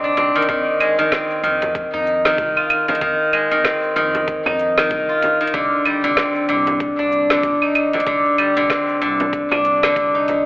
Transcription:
Already playing: C2 D3 C4
0.04 D4, shaker
0.17 C4, closed hi-hat, frame drum, shaker
0.35 D#3, closed hi-hat, shaker
0.42 closed hi-hat
0.49 F2 D#3, kick, closed hi-hat, shaker
0.80 G#3, closed hi-hat, claves, shaker
0.99 F2 D#3, closed hi-hat, shaker
1.12 C4, kick, snare, closed hi-hat, shaker
1.31 shaker
1.43 F2 D#3, closed hi-hat, shaker
1.62 closed hi-hat, frame drum, shaker
1.75 kick, closed hi-hat, shaker
1.94 F2 D#4, shaker
2.07 shaker
2.25 D#3, snare, closed hi-hat, shaker
2.38 C2, kick, closed hi-hat, shaker
2.56 F4, claves, shaker
2.70 closed hi-hat, claves, shaker
2.88 D#3, closed hi-hat, frame drum, shaker
2.95 closed hi-hat
3.01 F2 D#3, kick, closed hi-hat, shaker
3.33 G#3, closed hi-hat, claves, shaker
3.51 F2 D#3, closed hi-hat, shaker
3.64 C4, kick, snare, closed hi-hat, shaker
3.83 shaker
3.96 F2 D#3, closed hi-hat, shaker
4.15 closed hi-hat, frame drum, shaker
4.28 kick, closed hi-hat, shaker
4.46 F2 D#4, frame drum, claves, shaker
4.59 shaker
4.78 D#3, snare, closed hi-hat, claves, shaker
4.91 C2, kick, closed hi-hat, shaker
5.09 F4, shaker
5.22 closed hi-hat, frame drum, shaker
5.41 D#3, closed hi-hat, shaker
5.47 closed hi-hat
5.54 C2 D3, kick, closed hi-hat, shaker
5.85 G3, closed hi-hat, claves, shaker
6.04 C2 D3, closed hi-hat, shaker
6.17 C4, kick, snare, closed hi-hat
6.35 shaker
6.49 C2 D3, closed hi-hat, shaker
6.67 closed hi-hat, frame drum, shaker
6.80 kick, closed hi-hat, shaker
6.99 C2 D4, shaker
7.12 shaker
7.30 D3, snare, closed hi-hat, shaker
7.43 G1, kick, closed hi-hat, shaker
7.62 D#4, claves, shaker
7.75 closed hi-hat, claves, shaker
7.93 D3, closed hi-hat, frame drum, shaker
8.00 closed hi-hat
8.07 C2 D3, kick, closed hi-hat, shaker
8.25 shaker
8.38 G3, closed hi-hat, claves, shaker
8.57 C2 D3, closed hi-hat, shaker
8.70 C4, kick, snare, closed hi-hat, shaker
8.89 shaker
9.02 C2 D3, closed hi-hat, shaker
9.20 closed hi-hat, frame drum, shaker
9.33 kick, closed hi-hat, shaker
9.51 C2 D4, frame drum, claves, shaker
9.65 closed hi-hat, shaker
9.83 D3, snare, closed hi-hat, claves, shaker
9.96 C2, kick, closed hi-hat, shaker
10.15 D#4, shaker
10.28 closed hi-hat, frame drum, shaker

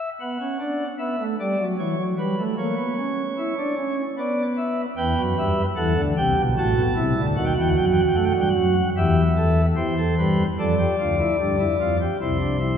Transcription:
0.20 B3 F#5
0.41 C#4
0.59 D4
0.99 B3 E5
1.19 A3
1.40 G3 D5
1.59 F#3
1.79 E3 C#5
1.98 F#3
2.18 G3 B4
2.38 A3
2.57 A#3 C#5
2.77 B3
2.98 C#4
3.38 E4
3.58 D4
3.78 C#4
4.17 B3 D5
4.57 E5
4.97 E2 E3 B4 G5
5.18 F#2 F#3
5.37 G2 G3 E5
5.76 E2 E3 A4 F#5
5.96 D2 D3
6.17 C2 C3 G4 G5
6.38 B1 B2
6.57 A1 A2 F#4 A5
6.76 B1 B2
6.96 C2 C3 E4
7.17 D2 D3
7.36 D#2 D#3 F#4 F#5
7.45 G5
7.53 E2 E3 F#5
7.60 G5
7.68 F#5
7.76 F#2 F#3 G5
7.85 F#5
7.92 G5
7.99 F#5
8.08 G5
8.15 A3 F#5
8.24 G5
8.31 F#5
8.36 G2 G3
8.40 G5
8.49 F#5
8.56 F#2 F#3
8.97 E2 E3 G4 E5
9.37 A4
9.76 E2 E3 G4 C5
9.98 A4
10.18 G2 G3 B4
10.58 F2 F3 A4 D5
10.78 G4
10.99 D2 D3 F4
11.19 E4
11.39 G2 G3 D4
11.59 E4
11.80 F2 F3 F4
12.01 G4
12.21 C2 C3 E4 C5
12.40 D4
12.59 E4

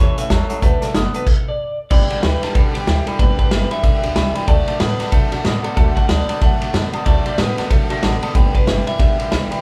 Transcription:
Already playing: A2
0.00 E2 A2 E3 G3 A3 C#4 A4 C#5 E5 A5
0.17 A2 E3 G3 A3 C#4 A4 C#5 E5 F#5, muted upright bass stroke, closed hi-hat
0.29 E2 A2 F#3 G3 A3 A4 C#5 E5 A5, kick, snare, closed hi-hat
0.48 A2 F#3 G3 A3 C#4 A4 C#5 E5 A5, muted upright bass stroke, closed hi-hat
0.61 D2 D3 F#3 A3 F#4 A4 B4 D5 F#5 A5, kick, closed hi-hat
0.80 D3 A3 F#4 A4 D5 F#5 A5, muted upright bass stroke, snare, closed hi-hat
0.93 F#1 D3 F#3 A3 B3 F#4 A4 D5 A5, snare, closed hi-hat
1.13 D3 A3 B3 F#4 A4 B4 D5 F#5 A5, muted upright bass stroke, closed hi-hat
1.27 A4, kick, crash
1.48 D5
1.90 G1 G2 D3 G3 B3 D4 G4 D5 G5 B5, kick, crash
2.10 G2 D3 G3 B3 D4 G4 D5 B5, ride
2.23 D2 G2 E3 G3 B3 D4 G4 B4 D5 G5 B5, snare, ride
2.42 G2 E3 G3 B3 D4 G4 D5 G5 A5, muted upright bass stroke, snare, ride
2.55 E2 G2 D3 G3 B3 D4 G4 A4 D5 G5 B5, kick, ride
2.74 E2 G2 D3 G3 B3 D4 G4 D5 B5, ride
2.87 D2 G2 E3 D4 D5 G5, snare, ride
3.06 G2 E3 G3 B3 D4 G4 A4 D5 G5 B5, muted upright bass stroke, ride
3.19 G1 G2 D3 G3 B3 D4 G4 B4 D5 G5 B5, kick, ride
3.38 G2 D3 G3 B3 D4 G4 B4 D5 G5 B5, muted upright bass stroke, kick, ride
3.51 G1 G2 E3 G3 B3 D4 G4 D5 G5 B5, snare, ride
3.70 G2 E3 G3 B3 D4 G4 D5 E5 G5 B5, muted upright bass stroke, ride
3.83 B1 G2 D3 G3 B3 D4 G4 D5 G5, kick, ride
4.03 D2 G2 D3 G3 B3 D4 G4 D5 G5 B5, ride
4.15 C2 G2 E3 G3 D4 G4 D5 G5 B5, snare, ride
4.34 G2 E3 B3 D4 G4 D5 G5 B5, muted upright bass stroke, ride
4.38 G3
4.47 D2 D3 F#3 A3 D4 F#4 D5 F#5 A5, kick, ride
4.66 D3 A3 D4 F#4 D5 A5, muted upright bass stroke, ride
4.70 A3
4.79 A2 D3 F#3 A3 B3 D4 B4 D5 F#5 A5, snare, ride
4.99 D3 A3 B3 D4 F#4 D5 F#5 A5, muted upright bass stroke, snare, ride
5.12 C3 D3 F#3 A3 D4 F#4 A4 D5 F#5 A5, kick, ride
5.32 B2 D3 A3 D4 F#4 D5 F#5 A5, ride
5.44 A2 D3 F#3 A3 B3 D4 D5 A5, snare, ride
5.48 F#4
5.63 D3 B3 D4 A4 D5 F#5 A5, muted upright bass stroke, ride
5.67 A3
5.76 D2 D3 F#3 A3 D4 F#4 A4 D5 F#5 A5, kick, ride
5.96 D3 A3 D4 F#4 D5 F#5 A5, kick, ride
6.08 D2 D3 F#3 A3 B3 F#4 D5 A5, snare, ride
6.28 D3 A3 B3 D4 F#4 D5 F#5 A5, muted upright bass stroke, ride
6.41 F#2 D3 F#3 A3 D4 F#4 D5 F#5 A5, kick, ride
6.60 A2 D3 A3 D4 F#4 D5 A5, ride
6.74 F#2 D3 F#3 A3 B3 D4 F#4 D5 A5, snare, ride
6.93 D3 A3 B3 D4 F#4 D5 F#5 A5, muted upright bass stroke, ride
7.05 D2 D3 F#3 A3 D4 F#4 D5 F#5 A5, kick, ride
7.26 D3 A3 D4 F#4 D5 F#5 A5, muted upright bass stroke, ride
7.32 D5
7.38 A2 D3 F#3 A3 B3 D4 F#4 B4 D5 A5, snare, ride
7.58 D3 A3 B3 D4 F#4 D5 F#5 A5, muted upright bass stroke, snare, ride
7.70 C3 D3 F#3 A3 D4 F#4 A4, kick, ride
7.89 B2 D3 A3 D4 F#4 D5 F#5 A5, ride
8.02 A1 D3 F#3 A3 B3 D4 F#4 D5 F#5 A5, snare, ride
8.21 D3 A3 B3 D4 F#4 A4 D5 F#5 A5, muted upright bass stroke, ride
8.34 G1 G2 D3 G3 B3 D4 G4 B4 D5 G5 B5, kick, ride
8.53 G2 D3 G3 B3 D4 G4 B4 G5 B5, kick, ride
8.66 G1 G2 E3 G3 B3 D4 G4 G5, snare, ride
8.86 G2 E3 G3 B3 D4 G4 D5 E5 G5 B5, muted upright bass stroke, ride
8.98 B1 G2 D3 G3 B3 D4 G4 D5 G5 B5, kick, ride
9.18 D2 G2 D3 G3 B3 D4 G4 D5 G5 B5, ride
9.31 B1 G2 E3 G3 B3 D4 G4 D5 G5 B5, snare, ride
9.50 G2 E3 G3 B3 D4 G4 D5 G5 B5, muted upright bass stroke, ride

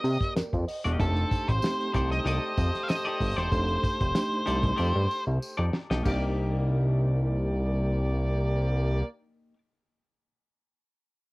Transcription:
Already playing: A#3 G4 D5 D#5
0.04 C3 G4, closed hi-hat, tambourine
0.21 kick, snare, closed hi-hat
0.36 F2 A#4, snare, tambourine
0.53 F2 C5, kick, closed hi-hat
0.68 D#5, open hi-hat, tambourine
0.85 E1 A#3 D#4 G4 D#5, snare, closed hi-hat
0.99 F1 A3 D4 D#4 G4 A4 C5, kick, closed hi-hat, tambourine
1.16 closed hi-hat
1.31 kick, closed hi-hat, tambourine
1.48 A1 C5, kick, closed hi-hat
1.62 A3 C4 D#4 G4, snare, tambourine
1.81 closed hi-hat
1.94 C2 D#4 G4 A4 C5 D5, kick, closed hi-hat, tambourine
2.12 D#5, snare, closed hi-hat
2.25 C2 D#4 G4 A4 D5, closed hi-hat, tambourine
2.58 F2, kick, closed hi-hat, tambourine
2.75 snare, closed hi-hat
2.83 F5
2.88 D#5, snare, tambourine
3.05 D#4 G4 A4 D5, closed hi-hat
3.20 G1, kick, open hi-hat, tambourine
3.36 E1 D#4 G4 A4 C5 D5, snare, closed hi-hat
3.51 F1 A3 D4 D#4 A4, kick, closed hi-hat, tambourine
3.68 closed hi-hat
3.83 kick, closed hi-hat, tambourine
4.01 F1, kick, closed hi-hat
4.15 A3 D4 D#4 G4, snare, tambourine
4.32 closed hi-hat
4.46 C2 D#4 G4 A4 D5, closed hi-hat, tambourine
4.63 kick, snare, closed hi-hat
4.76 F2 D#4 G4 A4 D5, tambourine
4.95 G2
5.11 tambourine
5.27 C2
5.42 tambourine
5.57 F2 D#4 G4 A4 D5
5.73 snare
5.90 B1 D#4 G4 A4 D#5, snare
6.02 C2 A#3 D4 D#4 G4 D5, kick, crash, tambourine
6.06 G4 D5

